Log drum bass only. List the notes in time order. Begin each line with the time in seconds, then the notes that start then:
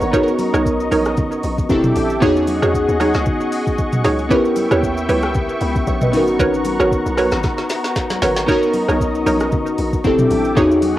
0.02 G#1
0.54 B1
0.92 A#1
1.44 A#1
1.70 F1
1.96 A1
2.22 E2
2.63 E2
2.89 D#2
3.15 C#2
4.05 C#2
4.71 D#2
5.09 C#2
5.61 C#2
5.87 A#1
6.13 G#1
6.39 G#1
6.80 G#1
7.06 B1
7.32 G#1
8.22 G#1
8.89 B1
9.26 A#1
9.79 A#1
10.05 F1
10.31 A1
10.57 E2